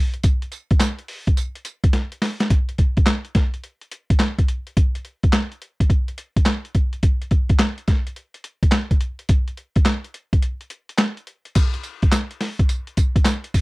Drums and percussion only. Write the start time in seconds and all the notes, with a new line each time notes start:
0.14 closed hi-hat
0.23 kick, closed hi-hat, tambourine
0.42 closed hi-hat
0.52 closed hi-hat, tambourine
0.71 kick, closed hi-hat
0.80 snare, clap, closed hi-hat, tambourine
0.99 closed hi-hat
1.08 open hi-hat
1.27 kick, closed hi-hat
1.37 closed hi-hat, tambourine
1.55 closed hi-hat
1.65 closed hi-hat, tambourine
1.84 kick, closed hi-hat
1.93 snare, closed hi-hat
2.12 closed hi-hat
2.22 snare, open hi-hat
2.40 snare, closed hi-hat
2.50 kick, closed hi-hat
2.69 closed hi-hat
2.78 kick, closed hi-hat
2.97 kick, closed hi-hat
3.06 snare, clap, closed hi-hat
3.25 closed hi-hat
3.35 kick, snare, closed hi-hat
3.54 closed hi-hat
3.64 closed hi-hat
3.81 closed hi-hat
3.92 closed hi-hat
4.10 kick, closed hi-hat
4.19 snare, clap, closed hi-hat
4.39 kick, closed hi-hat
4.48 closed hi-hat
4.67 closed hi-hat
4.77 kick, closed hi-hat
4.95 closed hi-hat
5.05 closed hi-hat
5.23 kick, closed hi-hat
5.33 snare, clap, closed hi-hat
5.52 closed hi-hat
5.62 closed hi-hat
5.80 kick, closed hi-hat
5.90 kick, closed hi-hat
6.08 closed hi-hat
6.18 closed hi-hat
6.36 kick, closed hi-hat
6.46 snare, clap, closed hi-hat
6.65 closed hi-hat
6.75 kick, closed hi-hat
6.93 closed hi-hat
7.03 kick, closed hi-hat
7.22 closed hi-hat
7.31 kick, closed hi-hat
7.49 kick, closed hi-hat
7.59 snare, clap, closed hi-hat
7.78 closed hi-hat
7.88 kick, snare, closed hi-hat
8.07 closed hi-hat
8.16 closed hi-hat
8.34 closed hi-hat
8.44 closed hi-hat
8.63 kick, closed hi-hat
8.72 snare, clap, closed hi-hat
8.91 kick, closed hi-hat
9.01 closed hi-hat
9.19 closed hi-hat
9.29 kick, closed hi-hat
9.48 closed hi-hat
9.57 closed hi-hat
9.76 kick, closed hi-hat
9.85 snare, clap, closed hi-hat
10.04 closed hi-hat
10.14 closed hi-hat
10.33 kick, closed hi-hat
10.42 closed hi-hat
10.61 closed hi-hat
10.70 closed hi-hat
10.89 closed hi-hat
10.98 snare, clap, closed hi-hat
11.17 closed hi-hat
11.27 closed hi-hat
11.45 closed hi-hat
11.55 kick, closed hi-hat, crash, tambourine
11.74 closed hi-hat
11.83 closed hi-hat, tambourine
12.02 kick, closed hi-hat
12.12 snare, clap, closed hi-hat, tambourine
12.31 closed hi-hat
12.41 snare, open hi-hat
12.59 kick, closed hi-hat
12.69 closed hi-hat, tambourine
12.87 closed hi-hat
12.97 kick, closed hi-hat, tambourine
13.16 kick, closed hi-hat
13.25 snare, clap, closed hi-hat, tambourine
13.44 closed hi-hat
13.54 kick, open hi-hat, tambourine